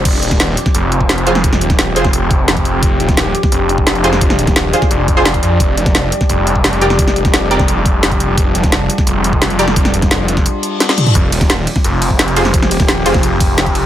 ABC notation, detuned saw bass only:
X:1
M:4/4
L:1/8
Q:1/4=173
K:Gphr
V:1 name="Detuned saw bass" clef=bass
F,,, E,,,2 z F,,,2 F,,,2- | F,,, E,,,2 F,,,4- F,,, | F,,, E,,,2 z F,,,2 F,,,2- | F,,, E,,,2 z F,,,3 F,, |
F,,, F,,,2 z F,,,2 F,,,2- | F,,, F,,,2 F,,,4- F,,, | F,,, F,,,2 z F,,,2 F,,,2- | F,,, F,,,2 F,,, z4 |
F,,, E,,,2 z F,,,2 F,,,2- | F,,, E,,,2 F,,,4- F,,, |]